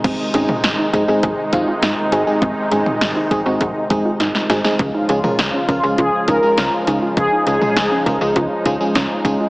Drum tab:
CC |x---------------|----------------|----------------|----------------|
HH |x-x-x-x-x-x-x-x-|x-x-x-x-x-x-x-x-|x-x-x-x-x-x-x-x-|x-x-x-x-x-x-x-x-|
SD |----o-------o---|----o-------oooo|----o-------o---|----o-------o---|
T2 |---o------------|---o------------|---o------------|---o------------|
BD |o-----o-o-o-----|o-----o-o-o-----|o-----o-o-o-----|o-----o-o-o---o-|